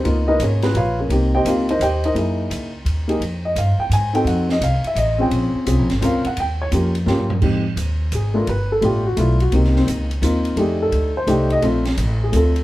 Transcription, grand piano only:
0.03 1.02 A#3 medium
0.03 0.62 B3 medium
0.03 0.27 D#4 medium
0.03 0.62 F4 medium
0.28 0.40 D#4 medium
0.28 0.40 A#4 medium
0.28 0.40 B4 medium
0.28 0.40 D#5 medium
0.43 0.64 C#4 medium
0.43 0.62 G#4 medium
0.43 0.64 A#4 medium
0.43 0.64 C#5 medium
0.63 0.75 B3 medium
0.63 0.75 F4 medium
0.63 0.75 G#4 medium
0.63 0.75 B4 medium
0.77 0.98 F4 medium
0.77 0.98 B4 medium
0.77 0.98 C#5 medium
0.77 0.98 F5 medium
1.00 1.11 C#4 medium
1.00 1.11 G#4 medium
1.00 1.11 A#4 medium
1.00 1.11 C#5 medium
1.10 1.44 A#3 medium
1.10 1.44 C4 soft
1.10 1.45 D#4 medium
1.10 1.34 G4 medium
1.35 1.46 G4 medium
1.35 1.46 C5 medium
1.35 1.46 D#5 medium
1.35 1.46 G5 medium
1.45 1.66 A#3 medium
1.45 1.66 C4 medium
1.45 1.66 D#4 medium
1.45 1.69 F4 medium
1.45 1.67 G4 medium
1.45 1.69 F5 medium
1.70 1.81 D#4 medium
1.70 1.81 A#4 medium
1.70 1.81 C5 medium
1.70 1.81 D#5 medium
1.82 2.04 G4 medium
1.82 2.04 C5 medium
1.82 2.04 D#5 medium
1.82 2.03 G5 medium
2.05 2.12 D#4 medium
2.05 2.12 A#4 medium
2.05 2.12 C5 medium
2.05 2.12 D#5 medium
2.15 2.69 A#3 medium
2.15 2.69 D#4 medium
2.15 2.69 E4 medium
2.15 2.70 G#4 medium
3.08 3.19 A#3 medium
3.08 3.19 D#4 medium
3.08 3.20 G4 medium
3.08 3.20 G#4 medium
3.45 3.56 D#5 medium
3.58 3.79 F5 medium
3.80 3.91 G5 medium
3.93 4.14 G#5 medium
4.13 4.58 C4 medium
4.13 4.59 D#4 medium
4.13 4.59 F#4 medium
4.13 4.59 A4 medium
4.13 4.26 G5 medium
4.27 4.49 F#5 medium
4.52 4.62 D#5 medium
4.64 4.85 F5 medium
4.87 4.97 E5 medium
4.98 5.19 D#5 medium
5.18 5.63 C4 medium
5.18 5.64 C#4 medium
5.18 5.64 F4 medium
5.18 5.65 G#4 medium
5.18 5.53 G5 medium
5.65 5.86 C4 medium
5.65 5.87 C#4 medium
5.65 5.87 F4 medium
5.65 5.87 G#4 medium
6.01 6.22 C4 medium
6.01 6.22 C#4 medium
6.01 6.22 F4 medium
6.01 6.23 A#4 medium
6.05 6.26 F5 medium
6.27 6.37 F#5 medium
6.40 6.60 G5 medium
6.62 6.68 C#5 medium
6.71 6.92 A#3 medium
6.71 6.92 C#4 medium
6.71 6.93 F4 medium
6.71 6.93 G4 medium
7.06 7.27 A#3 medium
7.06 7.27 C#4 medium
7.06 7.28 F4 medium
7.06 7.28 G4 medium
7.41 7.62 G#3 medium
7.41 7.62 C4 medium
7.41 7.63 D#4 medium
7.41 7.63 G4 medium
8.15 8.36 G#4 medium
8.34 8.45 A3 medium
8.34 8.46 B3 medium
8.34 8.46 D4 medium
8.34 8.46 F4 medium
8.34 8.48 A#4 medium
8.49 8.70 B4 medium
8.72 8.83 A4 medium
8.81 9.02 A3 medium
8.81 9.03 B3 medium
8.81 9.03 D4 medium
8.81 9.03 F4 medium
8.81 9.05 G4 medium
9.06 9.18 F#4 medium
9.16 9.37 A3 medium
9.16 9.38 B3 medium
9.16 9.38 D4 soft
9.16 9.38 E4 medium
9.16 9.40 F4 medium
9.42 9.53 F#4 medium
9.52 10.06 A#3 medium
9.52 9.76 C4 medium
9.52 10.06 D#4 medium
9.52 10.07 G4 medium
9.78 9.84 C4 medium
10.22 10.57 A#3 medium
10.22 10.58 C4 medium
10.22 10.57 D#4 medium
10.22 10.58 F4 medium
10.57 11.11 A3 medium
10.57 11.11 D4 medium
10.57 11.11 D#4 medium
10.57 11.12 G4 medium
10.57 10.81 G#4 medium
10.82 11.14 A4 medium
11.17 11.49 C5 medium
11.27 11.61 A3 medium
11.27 11.62 D4 medium
11.27 11.63 D#4 medium
11.27 11.64 G4 medium
11.53 11.63 D#5 loud
11.62 11.83 A3 medium
11.62 11.83 C4 medium
11.62 11.84 D4 medium
11.62 11.84 F4 medium
12.24 12.34 G#4 medium
12.32 12.53 A3 medium
12.32 12.53 C4 soft
12.32 12.54 D4 soft
12.32 12.54 F4 medium
12.36 12.64 A4 medium

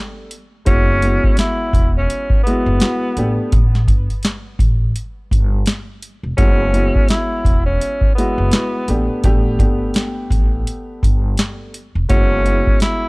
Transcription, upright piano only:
0.00 0.30 A3 medium
0.00 0.31 B3 medium
0.00 0.31 D4 medium
0.00 0.31 G4 loud
0.65 0.99 G#3 loud
0.65 1.00 B3 medium
0.65 1.00 E4 medium
0.65 1.00 F#4 loud
1.03 2.36 G#3 medium
1.03 2.36 B3 medium
1.03 2.36 E4 medium
1.03 2.37 F#4 loud
2.46 2.78 G#3 loud
2.46 2.79 B3 loud
2.46 2.79 E4 medium
2.46 2.79 F#4 loud
2.80 3.14 G#3 medium
2.80 3.14 B3 medium
2.80 3.14 E4 medium
2.80 3.14 F#4 medium
3.18 3.51 A3 medium
3.18 3.51 B3 medium
3.18 3.51 D4 medium
3.18 3.51 G4 medium
6.37 6.71 G#3 medium
6.37 6.71 B3 medium
6.37 6.71 E4 medium
6.37 6.71 F#4 loud
6.74 8.07 G#3 medium
6.74 8.07 B3 medium
6.74 8.08 E4 medium
6.74 8.08 F#4 loud
8.17 8.50 G#3 loud
8.17 8.50 B3 medium
8.17 8.50 E4 medium
8.17 8.50 F#4 loud
8.51 8.85 G#3 medium
8.51 8.85 B3 medium
8.51 8.85 E4 medium
8.51 8.86 F#4 loud
8.89 9.22 A3 medium
8.89 9.22 B3 medium
8.89 9.22 D4 medium
8.89 9.22 G4 medium
9.24 9.58 A3 loud
9.24 9.58 B3 medium
9.24 9.58 D4 medium
9.24 9.58 G4 loud
9.59 11.73 A3 medium
9.59 11.73 B3 medium
9.59 11.74 D4 medium
9.59 11.74 G4 loud
12.09 12.43 G#3 medium
12.09 12.43 B3 medium
12.09 12.43 E4 medium
12.09 12.43 F#4 loud
12.45 13.09 G#3 medium
12.45 13.09 B3 medium
12.45 13.09 E4 medium
12.45 13.09 F#4 loud

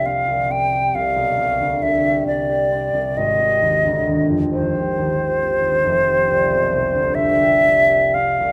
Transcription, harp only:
0.00 1.63 F1 soft
0.00 0.26 C2 soft
0.00 1.16 A3 soft
0.00 0.71 G4 soft
0.05 0.48 C4 soft
0.28 0.94 C2 soft
0.50 2.70 C4 soft
0.73 2.03 G4 soft
0.95 1.37 C2 soft
1.16 1.54 B1 soft
1.38 1.81 C2 soft
1.60 1.97 D2 soft
1.83 2.26 C2 soft
2.04 2.48 G4 soft
2.27 2.92 C2 soft
2.49 3.38 G4 soft
2.72 5.41 C4 soft
2.94 3.20 C2 soft
3.17 5.89 G#1 soft
3.39 4.74 G4 soft
3.62 4.06 D#2 soft
3.85 4.23 D2 soft
4.07 4.52 D#2 soft
4.29 4.68 F2 soft
4.53 4.96 D#2 soft
4.75 5.18 G4 soft
4.98 5.63 D#2 soft
5.20 6.07 G4 soft
5.42 8.14 C4 soft
5.64 5.89 D#2 soft
5.85 8.52 F1 soft
6.08 7.38 G4 soft
6.29 6.71 C2 soft
6.50 6.86 B1 soft
6.72 7.15 C2 soft
6.94 7.31 D2 soft
7.16 7.63 C2 soft
7.39 7.88 G4 soft
7.64 8.39 C2 soft
7.89 8.52 G4 soft
8.15 8.52 C4 soft
8.40 8.52 C2 soft

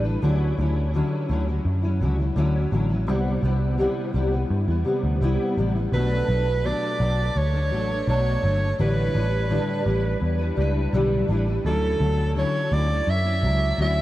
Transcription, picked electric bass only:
0.00 0.16 A1 medium
0.23 0.51 D2 medium
0.59 1.01 D2 medium
1.30 1.58 D2 medium
1.65 2.03 F#2 medium
2.01 2.30 C#2 medium
2.36 2.65 D2 medium
2.72 3.08 A1 medium
3.08 3.36 C2 medium
3.43 3.86 C2 medium
4.14 4.43 C2 medium
4.50 4.65 G2 medium
4.68 4.82 E2 medium
5.04 5.18 D2 medium
5.21 5.36 C2 medium
5.57 5.86 A1 medium
5.92 6.21 B1 medium
6.29 6.72 B1 medium
7.00 7.29 B1 medium
7.36 7.72 D2 medium
7.72 8.01 A1 medium
8.07 8.36 B1 medium
8.43 8.72 G1 medium
8.80 9.08 A1 medium
9.15 9.58 A1 medium
9.86 10.15 A1 medium
10.22 10.50 E2 medium
10.57 10.86 C#2 medium
10.93 11.22 B1 medium
11.29 11.57 A1 medium
11.65 11.93 D2 loud
12.00 12.43 D2 medium
12.72 13.00 D2 medium
13.07 13.44 F#2 medium
13.43 13.72 C#2 medium
13.78 14.02 D2 medium

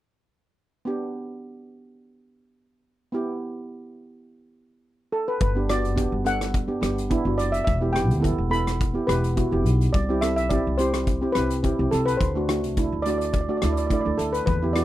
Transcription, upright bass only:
5.41 5.84 G1 medium
5.84 6.06 F#1 medium
6.12 6.67 G1 medium
6.82 7.16 G1 medium
7.25 7.38 G1 medium
7.38 7.61 F#1 medium
7.68 8.10 E1 medium
8.10 8.33 D2 medium
8.38 8.93 E1 medium
9.08 9.42 E1 medium
9.52 9.65 E1 medium
9.65 9.88 B1 medium
9.94 10.38 C2 medium
10.38 10.60 B1 medium
10.67 11.21 C2 medium
11.36 11.70 C2 medium
11.79 11.89 C2 medium
11.92 12.14 C2 medium
12.21 12.64 D2 medium
12.64 12.86 C2 medium
12.92 13.47 D2 medium
13.63 13.96 D2 medium
14.06 14.16 D2 medium
14.19 14.41 D2 medium
14.47 14.85 E2 medium

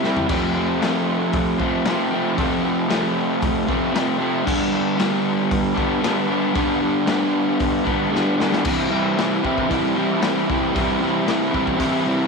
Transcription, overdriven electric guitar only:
0.00 0.27 C3 medium
0.00 0.27 E4 medium
0.05 0.29 G3 medium
0.05 0.30 C4 medium
0.27 0.80 F2 medium
0.27 0.80 C3 loud
0.27 0.59 F3 loud
0.27 0.57 A3 loud
0.31 0.54 C4 loud
0.54 0.84 A3 medium
0.54 0.84 C4 medium
0.59 0.82 F3 medium
0.81 1.85 F2 loud
0.81 1.84 C3 loud
0.81 1.62 F3 loud
0.81 1.60 A3 loud
0.85 1.57 C4 loud
1.58 1.87 A3 medium
1.58 1.88 C4 medium
1.63 1.86 F3 medium
1.85 2.36 C3 medium
1.85 2.14 F3 medium
1.85 2.12 A3 medium
1.90 2.10 C4 medium
2.11 2.38 A3 medium
2.11 2.39 C4 medium
2.16 2.37 F3 medium
2.36 2.88 F2 loud
2.36 2.89 C3 loud
2.36 2.67 F3 loud
2.36 2.65 A3 loud
2.40 2.63 C4 loud
2.64 2.91 A3 medium
2.64 2.92 C4 medium
2.69 2.90 F3 medium
2.89 3.94 F2 medium
2.89 3.92 C3 loud
2.89 3.71 F3 loud
2.89 3.69 A3 loud
2.94 3.67 C4 loud
3.68 3.94 F3 medium
3.68 3.95 A3 medium
3.68 3.97 C4 medium
3.93 4.44 C3 medium
3.93 4.21 F3 medium
3.93 4.20 A3 medium
3.98 4.17 C4 medium
4.19 4.45 A3 medium
4.19 4.44 C4 medium
4.23 4.46 F3 medium
4.44 4.96 G2 medium
4.44 4.96 D3 loud
4.44 4.75 G3 medium
4.44 4.73 B3 medium
4.49 4.71 D4 loud
4.71 4.98 G3 medium
4.71 5.00 B3 medium
4.71 5.00 D4 medium
4.97 6.02 G2 loud
4.97 6.00 D3 loud
4.97 5.80 G3 loud
4.97 5.76 B3 loud
5.01 5.73 D4 loud
5.75 6.03 B3 medium
5.75 6.04 D4 medium
5.80 6.01 G3 medium
6.01 6.54 D3 medium
6.01 6.31 G3 medium
6.01 6.28 B3 medium
6.05 6.26 D4 medium
6.27 6.55 B3 medium
6.27 6.56 D4 medium
6.32 6.55 G3 medium
6.53 7.05 G2 loud
6.53 7.06 D3 loud
6.53 6.83 G3 loud
6.53 6.81 B3 loud
6.58 6.79 D4 loud
6.80 7.08 G3 medium
6.80 7.08 B3 medium
6.80 7.09 D4 medium
7.06 8.12 G2 loud
7.06 8.09 D3 loud
7.06 7.87 G3 loud
7.06 7.85 B3 loud
7.11 7.83 D4 loud
7.84 8.11 G3 medium
7.84 8.12 B3 medium
7.84 8.13 D4 medium
8.11 8.63 D3 medium
8.11 8.41 G3 medium
8.11 8.39 B3 medium
8.11 8.37 D4 medium
8.38 8.64 B3 medium
8.38 8.63 D4 medium
8.43 8.65 G3 medium
8.64 8.89 C3 loud
8.64 8.91 E3 loud
8.64 8.91 G3 loud
8.64 8.92 C4 loud
8.64 8.93 E4 loud
8.89 9.16 C3 medium
8.89 9.18 E3 medium
8.89 9.18 G3 medium
8.89 9.19 C4 medium
8.93 9.20 E4 medium
9.17 9.42 C3 medium
9.17 9.43 E3 medium
9.17 9.44 G3 loud
9.17 9.45 C4 loud
9.17 9.45 E4 loud
9.42 9.68 C3 medium
9.42 9.68 E3 medium
9.42 9.69 G3 medium
9.42 9.71 C4 medium
9.42 9.71 E4 loud
9.69 9.94 C3 loud
9.69 9.95 E3 loud
9.69 9.95 G3 loud
9.69 9.97 C4 loud
9.69 9.97 E4 loud
9.95 10.19 C3 medium
9.95 10.21 E3 medium
9.95 10.21 G3 medium
9.95 10.23 C4 loud
9.95 10.23 E4 loud
10.21 10.47 C3 loud
10.21 10.48 E3 loud
10.21 10.48 G3 loud
10.21 10.50 C4 loud
10.21 10.50 E4 loud
10.48 10.72 C3 medium
10.48 10.73 E3 medium
10.48 10.74 G3 medium
10.48 10.75 C4 medium
10.48 10.75 E4 loud
10.73 10.99 C3 medium
10.73 11.00 E3 loud
10.73 11.00 G3 loud
10.73 11.03 C4 loud
10.73 11.02 E4 loud
11.00 11.25 C3 medium
11.00 11.27 E3 medium
11.00 11.28 G3 medium
11.00 11.29 C4 medium
11.00 11.29 E4 medium
11.26 11.51 C3 loud
11.26 11.52 E3 medium
11.26 11.52 G3 loud
11.26 11.54 C4 loud
11.26 11.53 E4 loud
11.52 11.76 C3 medium
11.52 11.78 E3 medium
11.52 11.78 G3 medium
11.52 11.80 C4 loud
11.52 11.80 E4 loud
11.78 12.04 C3 loud
11.78 12.05 E3 loud
11.78 12.06 G3 loud
11.78 12.07 C4 loud
11.78 12.07 E4 loud
12.06 12.27 C3 medium
12.06 12.27 E3 medium
12.06 12.27 G3 medium
12.06 12.27 C4 loud
12.06 12.27 E4 loud

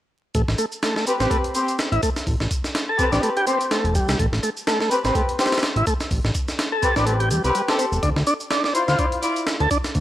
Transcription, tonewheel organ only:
0.35 0.42 A3 medium
0.58 0.65 A3 loud
0.83 0.95 A3 medium
0.96 1.05 A3 medium
1.20 1.30 C4 medium
1.30 1.37 A3 medium
1.92 2.01 E4 medium
2.03 2.10 A3 loud
2.89 3.11 A4 medium
3.12 3.21 D4 loud
3.23 3.30 A3 loud
3.37 3.46 G4 medium
3.47 3.58 C4 medium
3.71 3.94 A3 medium
3.95 4.18 G3 medium
4.19 4.26 A3 medium
4.43 4.50 A3 loud
4.67 4.79 A3 medium
4.81 4.90 A3 medium
5.05 5.15 C4 medium
5.16 5.22 A3 medium
5.77 5.85 E4 medium
5.87 5.94 A3 loud
6.72 6.95 A4 medium
6.96 7.05 D4 loud
7.06 7.13 A3 loud
7.20 7.29 G4 medium
7.31 7.42 G3 medium
7.55 7.62 G3 medium
7.79 7.86 C4 medium
8.03 8.10 D4 medium
8.27 8.34 D4 loud
8.51 8.63 D4 medium
8.65 8.73 D4 medium
8.88 8.98 F4 medium
8.99 9.06 D4 medium
9.61 9.69 A4 medium
9.71 9.78 D4 loud

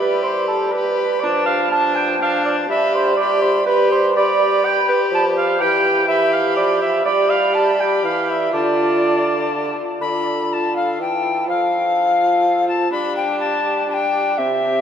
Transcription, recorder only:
0.00 0.74 B5 medium
0.76 1.25 B5 medium
1.24 1.72 A5 medium
1.73 2.21 A5 medium
2.22 2.69 A5 medium
2.70 3.17 B5 medium
3.20 3.67 B5 medium
3.68 4.14 B5 medium
4.15 5.30 B5 medium
5.61 6.06 B5 medium
6.08 7.04 B5 medium
7.05 8.50 B5 medium
8.54 9.74 A5 medium
10.01 10.54 B5 medium
10.53 10.75 A5 medium
10.76 10.99 F5 medium
11.01 11.47 G5 medium
11.49 12.67 F5 medium
12.68 12.91 A5 medium
12.92 13.16 B5 medium
13.16 13.39 G5 medium
13.40 13.88 A5 medium
13.90 14.39 G5 medium
13.90 13.95 A5 medium
14.37 14.81 E5 medium

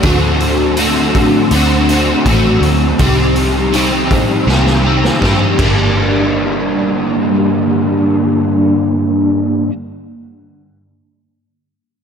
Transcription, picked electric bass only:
0.03 1.26 D2 medium
1.51 2.13 D2 medium
2.26 2.56 A1 medium
2.61 2.92 D2 medium
2.99 4.22 C2 medium
4.47 5.09 C2 medium
5.22 5.52 G2 medium
5.59 9.65 G1 medium

